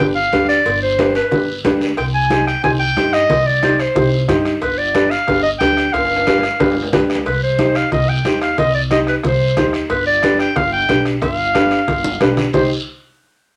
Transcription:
0.00 upright bass G1, upright piano D4 G4 B4, cowbell, high conga, low conga, long guiro
0.15 clarinet F5
0.32 upright bass D2, upright piano D4 G4 B4, cowbell, high conga, short guiro
0.49 clarinet D5, short guiro
0.66 upright bass G1, cowbell, high conga, long guiro
0.82 clarinet C5
0.98 upright piano D4 G4 B4, cowbell, high conga, high timbale, short guiro
1.15 clarinet B4, high timbale, short guiro
1.31 upright bass G1, upright piano D4 G4 B4, cowbell, high conga, low conga, low timbale, long guiro
1.64 upright bass D2, upright piano D4 G4 B4, cowbell, high conga, low timbale, short guiro
1.81 low timbale, short guiro
1.97 upright bass C2, clarinet G5, bombo low, bombo rim, cowbell, high conga, long guiro
2.14 clarinet G#5
2.30 upright piano D#4 G4 C5, bombo rim, cowbell, high conga, short guiro
2.47 clarinet G5, bombo rim, short guiro
2.63 upright bass C2, upright piano D#4 G4 C5, clarinet G#5, bombo low, bombo rim, cowbell, high conga, low conga, long guiro
2.80 clarinet G5
2.96 upright bass G2, upright piano D#4 G4 C5, bombo rim, cowbell, high conga, short guiro
3.13 clarinet D#5, bombo rim, short guiro
3.29 upright bass C2, bombo low, bombo rim, cowbell, high conga, low conga, long guiro
3.47 clarinet D5
3.62 upright piano D#4 G4 C5, bombo rim, cowbell, high conga, short guiro
3.79 clarinet C5, bombo rim, short guiro
3.95 upright bass C2, upright piano D#4 G4 C5, bombo low, bombo rim, cowbell, high conga, low conga, long guiro
4.28 upright bass G2, upright piano D#4 G4 C5, bombo low, bombo rim, cowbell, high conga, low conga, short guiro
4.45 bombo rim, short guiro
4.62 upright bass G1, clarinet B4, bombo low, bombo rim, cowbell, high conga, long guiro
4.78 clarinet D5
4.94 upright piano D4 G4 B4, bombo rim, cowbell, high conga, short guiro
5.11 clarinet F5, bombo rim, short guiro
5.28 upright bass G1, upright piano D4 G4 B4, bombo low, bombo rim, cowbell, high conga, low conga, long guiro
5.43 clarinet D#5
5.59 upright bass D2, upright piano D4 G4 B4, clarinet G5, bombo rim, cowbell, high conga, low timbale, short guiro
5.77 bombo rim, short guiro
5.93 upright bass G1, clarinet F5, bombo low, bombo rim, cowbell, high conga, high timbale, long guiro
6.05 high timbale
6.16 high timbale
6.27 upright piano D4 G4 B4, bombo rim, cowbell, high conga, high timbale, short guiro
6.38 low timbale
6.43 bombo rim, short guiro
6.60 upright bass G1, upright piano D4 G4 B4, bombo low, bombo rim, cowbell, high conga, low conga, low timbale, long guiro
6.71 low timbale
6.82 low timbale
6.92 upright bass D2, upright piano D4 G4 B4, bombo low, bombo rim, cowbell, high conga, low conga, low timbale, short guiro
7.10 bombo rim, short guiro
7.15 low timbale
7.26 upright bass C2, clarinet B4, bombo low, bombo rim, cowbell, high conga, long guiro
7.43 clarinet C5
7.59 upright piano D#4 G4 C5, bombo rim, cowbell, high conga, short guiro
7.75 clarinet F5, bombo rim, short guiro
7.92 upright bass C2, clarinet D#5, bombo low, bombo rim, cowbell, high conga, low conga, long guiro
8.09 clarinet G5
8.25 upright piano D#4 G4 C5, bombo rim, cowbell, high conga, low timbale, short guiro
8.41 clarinet F5, bombo rim, short guiro
8.58 upright bass C2, clarinet D#5, bombo low, bombo rim, cowbell, high conga, low conga, long guiro
8.74 clarinet D5
8.90 upright piano D#4 G4 C5, clarinet D#5, bombo rim, cowbell, high conga, short guiro
9.07 clarinet B4, bombo rim, short guiro
9.23 upright bass C2, clarinet C5, bombo low, bombo rim, cowbell, high conga, low conga, long guiro
9.57 upright bass D#2, upright piano D#4 G4 C5, bombo low, bombo rim, cowbell, high conga, low conga, low timbale, short guiro
9.73 bombo rim, short guiro
9.90 upright bass G1, clarinet B4, bombo low, bombo rim, cowbell, high conga, long guiro
10.07 clarinet D5
10.23 upright piano D4 G4 B4, bombo rim, cowbell, high conga, short guiro
10.39 clarinet G5, bombo rim, short guiro
10.56 upright bass G1, clarinet F5, bombo low, bombo rim, cowbell, high conga, low conga, long guiro
10.73 clarinet G5
10.89 upright bass B1, upright piano D4 G4 B4, bombo rim, cowbell, high conga, short guiro
11.05 bombo rim, short guiro
11.22 upright bass G1, clarinet F5, bombo low, bombo rim, cowbell, high conga, low conga, long guiro
11.55 upright piano D4 G4 B4, bombo rim, cowbell, high conga, short guiro
11.71 bombo rim, short guiro
11.88 upright bass G1, bombo low, bombo rim, cowbell, high conga, low conga, long guiro
12.04 high conga
12.21 upright bass B1, upright piano D4 G4 B4, bombo rim, cowbell, high conga, low timbale, short guiro
12.37 bombo rim, low conga, short guiro
12.53 upright piano D#4 G4 C5, clarinet C5, bombo low, low conga, low timbale, long guiro

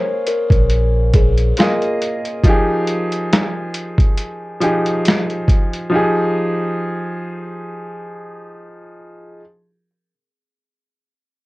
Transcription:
Already playing: upright piano A#3 F4 G#4 C#5, kalimba C#5
0.26 kalimba A#4, closed hi-hat
0.50 sub bass A#1, kick, closed hi-hat
0.70 closed hi-hat
1.13 kalimba G#4, kick, closed hi-hat
1.38 closed hi-hat
1.57 upright piano A#3 F4 G#4 D#5, snare, closed hi-hat
1.82 closed hi-hat
2.02 closed hi-hat
2.25 closed hi-hat
2.43 upright piano F3 D#4 G4, kick, closed hi-hat
2.49 upright piano G#4
2.87 closed hi-hat
3.12 closed hi-hat
3.33 snare, closed hi-hat
3.74 closed hi-hat
3.98 kick, closed hi-hat
4.17 closed hi-hat
4.60 upright piano F3 D#4 G4 G#4, closed hi-hat
4.86 closed hi-hat
5.05 snare, closed hi-hat
5.30 closed hi-hat
5.48 kick, closed hi-hat
5.73 closed hi-hat
5.90 upright piano F3 D#4 G4
5.95 upright piano G#4

